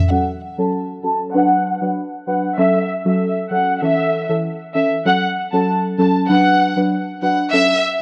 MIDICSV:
0, 0, Header, 1, 3, 480
1, 0, Start_track
1, 0, Key_signature, 3, "minor"
1, 0, Tempo, 618557
1, 83, Time_signature, 4, 2, 24, 8
1, 6223, End_track
2, 0, Start_track
2, 0, Title_t, "Violin section"
2, 0, Program_c, 0, 48
2, 82, Note_on_c, 0, 78, 100
2, 189, Note_off_c, 0, 78, 0
2, 449, Note_on_c, 0, 81, 73
2, 545, Note_off_c, 0, 81, 0
2, 804, Note_on_c, 0, 81, 68
2, 911, Note_off_c, 0, 81, 0
2, 1043, Note_on_c, 0, 78, 103
2, 1388, Note_off_c, 0, 78, 0
2, 1762, Note_on_c, 0, 78, 70
2, 1869, Note_off_c, 0, 78, 0
2, 2004, Note_on_c, 0, 76, 109
2, 2206, Note_off_c, 0, 76, 0
2, 2370, Note_on_c, 0, 76, 70
2, 2572, Note_off_c, 0, 76, 0
2, 2722, Note_on_c, 0, 78, 85
2, 2924, Note_off_c, 0, 78, 0
2, 2965, Note_on_c, 0, 76, 87
2, 3309, Note_off_c, 0, 76, 0
2, 3684, Note_on_c, 0, 76, 74
2, 3791, Note_off_c, 0, 76, 0
2, 3921, Note_on_c, 0, 78, 109
2, 4029, Note_off_c, 0, 78, 0
2, 4289, Note_on_c, 0, 81, 75
2, 4385, Note_off_c, 0, 81, 0
2, 4644, Note_on_c, 0, 81, 75
2, 4751, Note_off_c, 0, 81, 0
2, 4886, Note_on_c, 0, 78, 102
2, 5230, Note_off_c, 0, 78, 0
2, 5604, Note_on_c, 0, 78, 71
2, 5711, Note_off_c, 0, 78, 0
2, 5844, Note_on_c, 0, 76, 107
2, 6046, Note_off_c, 0, 76, 0
2, 6223, End_track
3, 0, Start_track
3, 0, Title_t, "Synth stab"
3, 0, Program_c, 1, 62
3, 80, Note_on_c, 1, 54, 87
3, 81, Note_on_c, 1, 61, 78
3, 84, Note_on_c, 1, 69, 96
3, 243, Note_off_c, 1, 54, 0
3, 244, Note_off_c, 1, 61, 0
3, 245, Note_off_c, 1, 69, 0
3, 450, Note_on_c, 1, 54, 74
3, 451, Note_on_c, 1, 61, 71
3, 453, Note_on_c, 1, 69, 82
3, 776, Note_off_c, 1, 54, 0
3, 777, Note_off_c, 1, 61, 0
3, 778, Note_off_c, 1, 69, 0
3, 800, Note_on_c, 1, 54, 75
3, 802, Note_on_c, 1, 61, 69
3, 805, Note_on_c, 1, 69, 84
3, 1023, Note_off_c, 1, 54, 0
3, 1025, Note_off_c, 1, 61, 0
3, 1026, Note_off_c, 1, 69, 0
3, 1040, Note_on_c, 1, 54, 89
3, 1043, Note_on_c, 1, 62, 82
3, 1045, Note_on_c, 1, 71, 104
3, 1378, Note_off_c, 1, 54, 0
3, 1380, Note_off_c, 1, 62, 0
3, 1381, Note_off_c, 1, 71, 0
3, 1406, Note_on_c, 1, 54, 75
3, 1408, Note_on_c, 1, 62, 69
3, 1410, Note_on_c, 1, 71, 83
3, 1560, Note_off_c, 1, 54, 0
3, 1561, Note_off_c, 1, 62, 0
3, 1562, Note_off_c, 1, 71, 0
3, 1761, Note_on_c, 1, 54, 71
3, 1762, Note_on_c, 1, 62, 67
3, 1764, Note_on_c, 1, 71, 77
3, 1924, Note_off_c, 1, 54, 0
3, 1924, Note_off_c, 1, 62, 0
3, 1925, Note_off_c, 1, 71, 0
3, 1999, Note_on_c, 1, 54, 86
3, 2002, Note_on_c, 1, 61, 82
3, 2003, Note_on_c, 1, 69, 97
3, 2163, Note_off_c, 1, 54, 0
3, 2165, Note_off_c, 1, 61, 0
3, 2165, Note_off_c, 1, 69, 0
3, 2367, Note_on_c, 1, 54, 73
3, 2368, Note_on_c, 1, 61, 70
3, 2371, Note_on_c, 1, 69, 84
3, 2694, Note_off_c, 1, 54, 0
3, 2695, Note_off_c, 1, 61, 0
3, 2696, Note_off_c, 1, 69, 0
3, 2720, Note_on_c, 1, 54, 75
3, 2723, Note_on_c, 1, 61, 71
3, 2726, Note_on_c, 1, 69, 83
3, 2944, Note_off_c, 1, 54, 0
3, 2945, Note_off_c, 1, 61, 0
3, 2947, Note_off_c, 1, 69, 0
3, 2963, Note_on_c, 1, 52, 90
3, 2964, Note_on_c, 1, 61, 87
3, 2966, Note_on_c, 1, 69, 101
3, 3299, Note_off_c, 1, 52, 0
3, 3300, Note_off_c, 1, 61, 0
3, 3301, Note_off_c, 1, 69, 0
3, 3329, Note_on_c, 1, 52, 76
3, 3332, Note_on_c, 1, 61, 67
3, 3334, Note_on_c, 1, 69, 84
3, 3482, Note_off_c, 1, 52, 0
3, 3483, Note_off_c, 1, 61, 0
3, 3484, Note_off_c, 1, 69, 0
3, 3682, Note_on_c, 1, 52, 73
3, 3684, Note_on_c, 1, 61, 63
3, 3685, Note_on_c, 1, 69, 79
3, 3844, Note_off_c, 1, 52, 0
3, 3845, Note_off_c, 1, 61, 0
3, 3846, Note_off_c, 1, 69, 0
3, 3921, Note_on_c, 1, 54, 85
3, 3923, Note_on_c, 1, 61, 79
3, 3926, Note_on_c, 1, 69, 91
3, 4084, Note_off_c, 1, 54, 0
3, 4085, Note_off_c, 1, 61, 0
3, 4086, Note_off_c, 1, 69, 0
3, 4288, Note_on_c, 1, 54, 75
3, 4291, Note_on_c, 1, 61, 69
3, 4294, Note_on_c, 1, 69, 82
3, 4615, Note_off_c, 1, 54, 0
3, 4616, Note_off_c, 1, 61, 0
3, 4618, Note_off_c, 1, 69, 0
3, 4642, Note_on_c, 1, 54, 75
3, 4643, Note_on_c, 1, 61, 74
3, 4646, Note_on_c, 1, 69, 84
3, 4864, Note_off_c, 1, 54, 0
3, 4865, Note_off_c, 1, 61, 0
3, 4866, Note_off_c, 1, 69, 0
3, 4883, Note_on_c, 1, 54, 89
3, 4883, Note_on_c, 1, 62, 84
3, 4886, Note_on_c, 1, 71, 96
3, 5219, Note_off_c, 1, 54, 0
3, 5220, Note_off_c, 1, 62, 0
3, 5221, Note_off_c, 1, 71, 0
3, 5247, Note_on_c, 1, 54, 77
3, 5250, Note_on_c, 1, 62, 69
3, 5253, Note_on_c, 1, 71, 86
3, 5401, Note_off_c, 1, 54, 0
3, 5402, Note_off_c, 1, 62, 0
3, 5403, Note_off_c, 1, 71, 0
3, 5601, Note_on_c, 1, 54, 72
3, 5604, Note_on_c, 1, 62, 67
3, 5608, Note_on_c, 1, 71, 79
3, 5764, Note_off_c, 1, 54, 0
3, 5765, Note_off_c, 1, 62, 0
3, 5767, Note_off_c, 1, 71, 0
3, 5840, Note_on_c, 1, 54, 88
3, 5843, Note_on_c, 1, 61, 83
3, 5844, Note_on_c, 1, 69, 91
3, 6004, Note_off_c, 1, 54, 0
3, 6005, Note_off_c, 1, 61, 0
3, 6005, Note_off_c, 1, 69, 0
3, 6223, End_track
0, 0, End_of_file